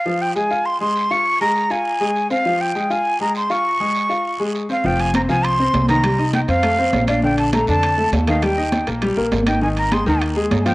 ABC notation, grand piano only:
X:1
M:4/4
L:1/8
Q:1/4=201
K:Fm
V:1 name="Grand piano"
[F,F]2 [A,A] [Ff]2 [A,A]2 [Ff]- | [Ff] [A,A]2 [Ff]2 [A,A]2 [Cc] | [F,F]2 [A,A] [Ff]2 [A,A]2 [Ff]- | [Ff] [A,A]2 [Ff]2 [A,A]2 [Cc] |
[F,F]2 [Cc] [F,F]2 [Cc]2 [E,E] | [G,G] [Ee]2 [Cc] [=A,=A] [Cc]2 [=D=d] | [=D,=D]2 [=A,=A] [D,D]2 [A,A]2 [E,E] | [G,G] [Ee]2 [B,B] [G,G] [B,B]2 [Ee] |
[E,E]2 [A,A] [E,E]2 [A,A]2 [F,F] |]